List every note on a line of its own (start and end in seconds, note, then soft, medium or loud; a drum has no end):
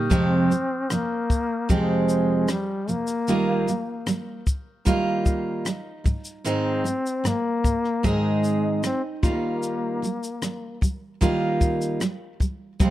0.00 0.13 G3 medium
0.00 0.10 A#3 soft
0.00 0.11 D#4 medium
0.00 0.13 D#4 medium
0.00 0.10 G4 medium
0.00 0.13 A#4 medium
0.10 0.48 F2 medium
0.10 0.50 C3 medium
0.10 0.50 F3 medium
0.10 0.51 G#3 medium
0.10 0.51 C4 medium
0.10 0.94 C4 medium
0.10 0.51 G4 medium
0.10 kick loud
0.10 shaker medium
0.50 0.82 F2 soft
0.50 0.83 C3 soft
0.50 0.83 F3 soft
0.50 shaker soft
0.90 1.22 F2 soft
0.90 1.22 C3 medium
0.90 1.23 F3 medium
0.90 1.70 A#3 medium
0.90 cross-stick loud
0.90 shaker medium
1.30 kick medium
1.30 shaker soft
1.69 2.47 F2 medium
1.69 2.48 C3 medium
1.69 2.50 F3 medium
1.69 2.49 G#3 medium
1.69 2.52 G#3 medium
1.69 2.49 C4 medium
1.69 2.51 G4 medium
1.69 kick medium
1.69 shaker medium
2.09 shaker medium
2.48 2.80 F2 soft
2.48 2.81 C3 medium
2.48 2.81 F3 medium
2.48 2.91 G3 medium
2.48 cross-stick medium
2.48 shaker medium
2.88 3.20 F2 soft
2.88 3.20 C3 soft
2.88 3.21 F3 soft
2.88 4.48 A#3 medium
2.88 shaker soft
3.07 shaker soft
3.28 3.66 D#3 medium
3.28 3.68 G3 medium
3.28 3.68 A#3 medium
3.28 3.68 D#4 medium
3.28 3.68 F4 medium
3.28 shaker medium
3.67 3.99 D#3 soft
3.67 4.00 G3 soft
3.67 shaker soft
4.06 4.39 D#3 medium
4.06 4.40 G3 medium
4.06 cross-stick medium
4.06 shaker medium
4.47 kick medium
4.47 shaker soft
4.85 5.65 D#3 medium
4.85 5.66 G3 medium
4.85 5.66 A#3 medium
4.85 6.46 D#4 medium
4.85 5.66 F4 medium
4.85 kick medium
4.85 shaker medium
5.26 kick medium
5.26 shaker soft
5.65 5.97 D#3 medium
5.65 5.98 G3 medium
5.65 cross-stick medium
5.65 shaker medium
6.04 6.37 G#2 soft
6.04 6.38 D#3 soft
6.04 6.38 G#3 medium
6.04 kick medium
6.04 shaker soft
6.25 shaker soft
6.44 6.83 G#2 medium
6.44 6.84 D#3 medium
6.44 6.85 G#3 medium
6.44 6.85 C4 medium
6.44 7.29 C4 loud
6.44 6.85 D#4 medium
6.44 6.86 G#4 medium
6.44 shaker medium
6.84 7.16 G#2 soft
6.84 7.17 D#3 soft
6.84 7.17 G#3 soft
6.84 shaker soft
7.06 shaker soft
7.24 7.56 G#2 medium
7.24 7.57 D#3 medium
7.24 7.57 G#3 medium
7.24 8.08 A#3 medium
7.24 cross-stick medium
7.24 shaker medium
7.64 7.96 G#2 soft
7.64 7.97 D#3 soft
7.64 7.97 G#3 soft
7.64 kick medium
7.64 shaker soft
7.85 cross-stick soft
8.03 8.82 G#2 medium
8.03 8.84 D#3 medium
8.03 8.83 G#3 medium
8.03 8.85 G#3 medium
8.03 8.83 C4 medium
8.03 9.23 D#4 medium
8.03 8.84 G#4 medium
8.03 kick medium
8.03 shaker medium
8.44 shaker soft
8.83 9.15 G#2 medium
8.83 9.16 D#3 medium
8.83 9.16 G#3 medium
8.83 9.02 C4 medium
8.83 cross-stick medium
8.83 shaker medium
9.23 10.01 D#3 soft
9.23 10.04 G3 medium
9.23 10.03 A#3 medium
9.23 10.79 A#3 medium
9.23 10.03 D#4 medium
9.23 10.05 F4 medium
9.23 kick loud
9.23 shaker soft
9.63 shaker medium
10.02 10.34 D#3 soft
10.02 10.35 G3 soft
10.02 shaker soft
10.23 shaker soft
10.42 10.74 D#3 medium
10.42 10.75 G3 medium
10.42 cross-stick medium
10.42 shaker medium
10.81 11.13 D#3 soft
10.81 11.14 G3 soft
10.81 kick medium
10.81 shaker soft
11.21 11.99 D#3 medium
11.21 12.02 G3 medium
11.21 12.01 A#3 medium
11.21 12.01 D#4 medium
11.21 12.03 F4 medium
11.21 kick medium
11.21 shaker medium
11.61 kick medium
11.61 shaker medium
11.82 shaker soft
12.00 12.32 D#3 medium
12.00 12.33 G3 medium
12.00 cross-stick medium
12.00 shaker medium
12.40 12.72 D#3 soft
12.40 12.73 G3 medium
12.40 kick medium
12.40 shaker soft
12.79 12.90 F2 medium
12.79 12.90 C3 medium
12.79 12.90 G3 medium
12.79 12.90 G#3 medium
12.79 12.90 C4 medium
12.79 12.90 C4 loud
12.79 12.90 F4 medium
12.79 kick loud
12.79 shaker medium